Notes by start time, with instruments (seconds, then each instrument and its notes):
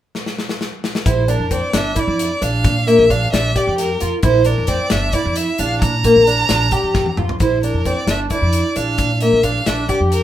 0.15 snare
0.26 snare
0.38 snare
0.49 snare
0.61 snare
0.84 snare
0.95 snare
1.06 upright bass A#1, twelve-string acoustic guitar E4, violin C5, kick, closed hi-hat
1.28 twelve-string acoustic guitar D4, violin A#4, closed hi-hat
1.40 upright bass F2
1.51 twelve-string acoustic guitar C4, violin D5, kick, closed hi-hat
1.73 upright bass G1, twelve-string acoustic guitar D4, violin E5, snare, closed hi-hat
1.96 twelve-string acoustic guitar E4, violin D5, kick, closed hi-hat
2.08 upright bass F2
2.19 closed hi-hat
2.41 upright bass A#1, twelve-string acoustic guitar D4, violin F5, closed hi-hat
2.64 upright bass A#2, kick, closed hi-hat
2.87 twelve-string acoustic guitar A#3, violin E5, closed hi-hat
2.99 upright bass A#1
3.10 twelve-string acoustic guitar D4, violin F5, kick, closed hi-hat
3.32 upright bass A#1, twelve-string acoustic guitar D4, violin E5, snare, closed hi-hat
3.56 twelve-string acoustic guitar G4, violin D5, kick, closed hi-hat
3.67 upright bass F2
3.78 violin A#4, snare, closed hi-hat
4.00 upright bass F2, twelve-string acoustic guitar F4, closed hi-hat
4.23 upright bass A#1, twelve-string acoustic guitar E4, violin C5, kick, closed hi-hat
4.45 twelve-string acoustic guitar D4, violin A#4, closed hi-hat
4.58 upright bass F2
4.67 twelve-string acoustic guitar C4, violin D5, kick, snare, closed hi-hat
4.90 upright bass G1, twelve-string acoustic guitar D4, violin E5, snare, closed hi-hat
5.13 twelve-string acoustic guitar E4, violin D5, kick, closed hi-hat
5.25 upright bass F2
5.36 violin E5, closed hi-hat
5.58 upright bass A#1, twelve-string acoustic guitar D4, violin F5, closed hi-hat
5.81 upright bass A#2, violin A#5, kick, closed hi-hat
6.04 twelve-string acoustic guitar A#3, kick, closed hi-hat
6.16 upright bass A#1
6.27 twelve-string acoustic guitar D4, closed hi-hat
6.49 upright bass A#1, twelve-string acoustic guitar D4, snare, closed hi-hat
6.71 twelve-string acoustic guitar G4, kick, closed hi-hat
6.84 upright bass F2
6.94 kick, snare
7.06 high tom
7.17 upright bass F2, twelve-string acoustic guitar F4, mid tom
7.29 floor tom
7.40 upright bass A#1, twelve-string acoustic guitar E4, violin C5, kick, closed hi-hat
7.63 twelve-string acoustic guitar D4, violin A#4, closed hi-hat
7.74 upright bass F2
7.85 twelve-string acoustic guitar C4, violin D5, kick, closed hi-hat
8.07 upright bass G1, twelve-string acoustic guitar D4, violin E5, snare, closed hi-hat
8.30 twelve-string acoustic guitar E4, violin D5, kick, closed hi-hat
8.42 upright bass F2
8.53 closed hi-hat
8.76 upright bass A#1, twelve-string acoustic guitar D4, violin F5, closed hi-hat
8.98 upright bass A#2, kick, closed hi-hat
9.21 twelve-string acoustic guitar A#3, violin E5, closed hi-hat
9.32 upright bass A#1
9.43 twelve-string acoustic guitar D4, violin F5, kick, closed hi-hat
9.66 upright bass A#1, twelve-string acoustic guitar D4, violin E5, snare, closed hi-hat
9.89 twelve-string acoustic guitar G4, violin D5, kick, closed hi-hat
10.00 upright bass F2
10.12 violin A#4, closed hi-hat